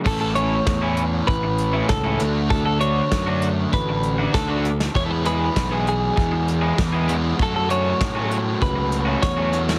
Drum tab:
CC |x---------------|----------------|----------------|----------------|
HH |--x---x---x---x-|--x---x---x---x-|--x---x---x---x-|--x---x---x---x-|
SD |----o-------o---|----o-------o--o|----o-------o---|----o-------o--o|
BD |o---o---o---o---|o---o---o---o---|o---o---o---o---|o---o---o---o---|